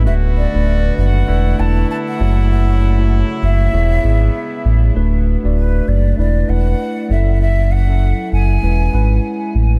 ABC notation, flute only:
X:1
M:4/4
L:1/16
Q:"Swing 16ths" 1/4=98
K:F#m
V:1 name="Flute"
e2 d4 f4 a2 a f3 | f4 z2 e8 z2 | z4 B2 d2 d2 f4 e2 | e2 f4 g8 z2 |]